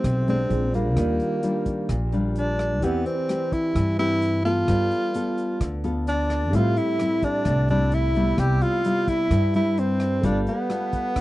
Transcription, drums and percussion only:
0.04 kick medium
0.04 cross-stick medium
0.04 closed hi-hat soft
0.28 closed hi-hat soft
0.50 closed hi-hat soft
0.74 closed hi-hat soft
0.97 kick medium
0.97 cross-stick medium
0.97 closed hi-hat soft
1.20 closed hi-hat soft
1.43 closed hi-hat soft
1.66 kick medium
1.66 closed hi-hat soft
1.89 kick medium
1.89 cross-stick medium
1.89 closed hi-hat soft
2.12 closed hi-hat soft
2.36 closed hi-hat soft
2.59 cross-stick medium
2.59 closed hi-hat soft
2.82 kick medium
2.82 closed hi-hat soft
3.06 closed hi-hat soft
3.29 cross-stick medium
3.29 closed hi-hat soft
3.52 kick medium
3.52 closed hi-hat soft
3.75 kick medium
3.75 cross-stick medium
3.75 closed hi-hat soft
3.99 closed hi-hat soft
4.22 closed hi-hat soft
4.45 closed hi-hat soft
4.68 kick medium
4.68 cross-stick medium
4.68 closed hi-hat soft
4.91 closed hi-hat soft
5.14 closed hi-hat soft
5.38 closed hi-hat soft
5.61 kick medium
5.61 cross-stick medium
5.61 closed hi-hat soft
5.84 closed hi-hat soft
6.07 closed hi-hat soft
6.30 cross-stick medium
6.30 closed hi-hat soft
6.53 kick medium
6.53 closed hi-hat soft
6.77 closed hi-hat soft
6.99 cross-stick medium
6.99 closed hi-hat soft
7.22 kick medium
7.22 closed hi-hat soft
7.45 kick medium
7.45 cross-stick medium
7.45 closed hi-hat soft
7.69 closed hi-hat soft
7.92 closed hi-hat soft
8.15 closed hi-hat soft
8.38 kick medium
8.38 cross-stick medium
8.38 closed hi-hat soft
8.61 closed hi-hat soft
8.84 closed hi-hat soft
9.08 kick medium
9.08 closed hi-hat soft
9.31 kick medium
9.31 cross-stick medium
9.31 closed hi-hat soft
9.54 closed hi-hat soft
9.78 closed hi-hat soft
10.00 cross-stick medium
10.00 closed hi-hat soft
10.23 kick medium
10.23 closed hi-hat soft
10.47 closed hi-hat soft
10.70 cross-stick medium
10.70 closed hi-hat soft
10.93 kick medium
10.93 closed hi-hat soft
11.16 kick medium
11.16 cross-stick medium
11.16 closed hi-hat soft

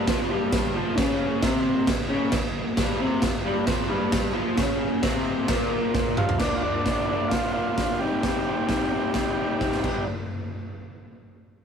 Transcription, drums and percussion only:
0.08 kick loud
0.08 snare loud
0.08 crash medium
0.52 kick loud
0.52 snare loud
0.52 crash medium
0.98 kick loud
0.98 snare loud
0.98 crash medium
1.43 kick loud
1.43 snare loud
1.43 crash medium
1.87 kick loud
1.87 snare loud
1.87 crash medium
2.32 kick loud
2.32 snare loud
2.32 crash medium
2.77 kick loud
2.77 snare loud
2.77 crash medium
3.22 kick loud
3.22 snare loud
3.22 crash medium
3.67 kick loud
3.67 snare loud
3.67 crash medium
4.12 kick loud
4.12 snare loud
4.12 crash medium
4.58 kick loud
4.58 snare loud
4.58 crash medium
5.03 kick loud
5.03 snare loud
5.03 crash medium
5.48 kick loud
5.48 snare loud
5.48 crash medium
5.94 kick loud
5.94 snare medium
6.17 mid tom loud
6.29 floor tom loud
6.40 kick loud
6.40 snare loud
6.40 crash loud
6.86 kick loud
6.86 snare loud
6.86 open hi-hat medium
7.31 kick loud
7.31 snare loud
7.31 open hi-hat medium
7.78 kick loud
7.78 snare loud
7.78 open hi-hat medium
8.23 kick loud
8.23 snare loud
8.23 open hi-hat soft
8.69 kick loud
8.69 snare loud
8.69 open hi-hat soft
9.14 kick loud
9.14 snare loud
9.14 open hi-hat medium
9.60 kick loud
9.60 snare medium
9.72 snare medium
9.84 kick medium
9.84 crash medium

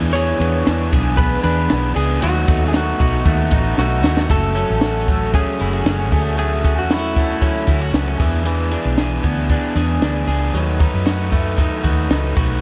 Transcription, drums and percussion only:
0.15 hi-hat pedal medium
0.15 ride medium
0.41 ride medium
0.67 snare loud
0.67 ride medium
0.93 kick medium
0.93 ride medium
1.18 kick loud
1.18 ride medium
1.44 snare soft
1.44 ride medium
1.70 snare loud
1.70 ride medium
1.96 open hi-hat medium
1.96 ride medium
2.22 hi-hat pedal medium
2.22 ride medium
2.48 kick loud
2.48 ride medium
2.74 snare loud
2.74 ride medium
3.00 kick medium
3.00 ride medium
3.26 kick medium
3.26 ride medium
3.51 kick medium
3.51 snare soft
3.51 ride medium
3.78 snare medium
4.04 snare loud
4.17 snare loud
4.30 kick loud
4.30 closed hi-hat medium
4.56 closed hi-hat medium
4.81 snare loud
4.81 closed hi-hat medium
5.08 kick medium
5.08 closed hi-hat medium
5.34 kick medium
5.34 closed hi-hat medium
5.59 closed hi-hat medium
5.86 snare loud
5.86 closed hi-hat medium
6.12 kick loud
6.12 open hi-hat medium
6.38 closed hi-hat medium
6.65 kick loud
6.65 closed hi-hat medium
6.91 snare loud
6.91 closed hi-hat medium
7.17 kick medium
7.17 closed hi-hat medium
7.42 kick medium
7.42 closed hi-hat medium
7.67 kick medium
7.67 snare soft
7.67 closed hi-hat medium
7.94 snare loud
7.94 closed hi-hat medium
8.19 kick loud
8.19 open hi-hat medium
8.45 closed hi-hat medium
8.71 closed hi-hat medium
8.98 snare loud
8.98 closed hi-hat medium
9.23 kick medium
9.23 closed hi-hat medium
9.49 kick medium
9.49 closed hi-hat medium
9.75 snare soft
9.75 closed hi-hat medium
10.02 snare loud
10.02 closed hi-hat medium
10.29 open hi-hat medium
10.55 closed hi-hat medium
10.80 kick loud
10.80 closed hi-hat medium
11.07 snare loud
11.07 closed hi-hat medium
11.32 kick medium
11.32 closed hi-hat medium
11.58 kick medium
11.58 closed hi-hat medium
11.84 kick medium
11.84 closed hi-hat medium
12.10 snare loud
12.10 closed hi-hat medium
12.37 kick medium
12.37 open hi-hat medium

